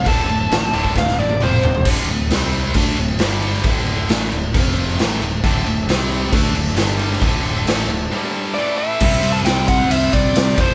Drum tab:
CC |x-x-x-x---------|x-x-x-x-x-x-x-x-|x-x-x-x-x-x-x-x-|x-x-x-x-x-x-x-x-|
RD |----------------|----------------|----------------|----------------|
SD |----o---oo------|----o-------o--o|----o------oo---|----o------oo--o|
T1 |-----------o----|----------------|----------------|----------------|
T2 |------------o---|----------------|----------------|----------------|
FT |--------------oo|----------------|----------------|----------------|
BD |o------oo-------|o-------o-------|o-------o-------|o-------o-------|

CC |x-x-x-x---------|x---------------|
RD |----------------|--x-x-x-x-x-x-x-|
SD |----o-----------|----o-------o---|
T1 |----------------|----------------|
T2 |----------------|----------------|
FT |----------------|----------------|
BD |o---------------|o-----o---o---o-|